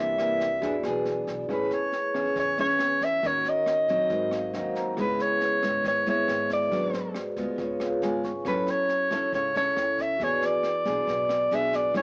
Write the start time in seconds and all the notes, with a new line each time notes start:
Already playing: C2 C3 E3 A#3 D4 E4 G4 A#4 D5
0.00 E5
0.18 E3 A#3 D4, cross-stick, snare
0.40 kick, snare
0.59 E2 E3 B3 D4 F#4 G#4 B4, kick, snare
0.65 D5
0.83 B1 B3 D4 G#4, cross-stick, snare
1.05 snare
1.27 B1, kick, snare
1.46 A1 A3 C#4 E4 G#4 B4, kick, cross-stick, snare
1.50 G#4 B4 C#5
1.71 C#5, snare
1.92 snare
2.14 E2 C#4 E4 G#4, kick, cross-stick, snare
2.35 E2 E3, kick, snare
2.40 C#5
2.58 C#4 E4 G#4 C#5, snare
2.79 E2, cross-stick, snare
3.01 E5, kick, snare
3.23 D#2 D#3 C#4 F#4 A#4 C#5, kick, snare
3.45 snare
3.49 D#5
3.66 cross-stick, snare
3.88 A#1 F#3 C4 D#4, kick, snare
4.08 G#1 G#2 D#4 F#4, kick, snare
4.12 A#4 C5
4.31 F5, cross-stick, snare
4.53 D#2 F#3 C4 D#4 F#5, snare
4.75 A#5, kick, snare
4.95 C#2 C#3 G#3 B3 E4 G#4 B4, kick, cross-stick, snare
5.00 B4 C#5
5.19 C#5, snare
5.41 snare
5.63 G#1 G#3 B3 E4, kick, cross-stick, snare
5.84 G#1 G#2 C#5, kick, snare
6.05 G#3 B3 E4 G#4 B4 E5, snare
6.10 C#5
6.28 G#1, cross-stick, snare
6.50 D5, kick, snare
6.69 G#1 G#2 F#3 B3 D4 F#4 G#4 B4, kick, snare
6.75 D5
6.93 snare
7.14 cross-stick, snare
7.36 D2 G#3 B3 F4, kick, snare
7.56 C#2 C#3 F4 G#4, kick, snare
7.60 B4 C#5
7.80 F5, cross-stick, snare
8.02 G#1 G#3 B3 F4 G#5, snare
8.24 C#6, kick, snare
8.43 F#2 F#3 C#4 E4 A4, kick, cross-stick, snare
8.47 A4 B4 C#5
8.67 C#5, snare
8.89 snare
9.11 C#2 C#4 E4 A4, kick, cross-stick, snare
9.33 C#2 C#3 C#5, kick, snare
9.55 C#4 E4 A4 C#5, snare
9.76 C#2, cross-stick, snare
9.98 E5, kick, snare
10.17 E2 E3 B3 D4 F#4 G#4, kick, snare
10.21 G#4 B4 C#5 D5
10.42 snare
10.46 D5
10.63 cross-stick, snare
10.85 B1 B3 D4 G#4, kick, snare
11.07 B1 B2, kick, snare
11.29 cross-stick, snare
11.51 B1 B3 D4 G#4 E5, snare
11.73 D5, kick, snare
11.92 A1 A3 C#4 E4 G#4, kick, cross-stick, snare
11.96 B4 C#5